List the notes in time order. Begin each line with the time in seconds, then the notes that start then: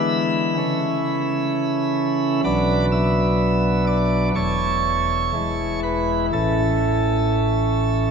Already playing: D3 E3 G#3 B3 E5 B5 E6
0.58 C#3 E3 A3 C#4
2.44 B1 B2 F#3 B3 D4 D5 B5 D6
2.92 E5 E6
3.87 D5 D6
4.35 E1 E2 E3 A3 E4 C#5 A5 C#6
5.34 E1 E2 E3 G#3 E4
5.83 B4 B5
6.33 A1 A2 E3 A3 C#4 A4 E5 A5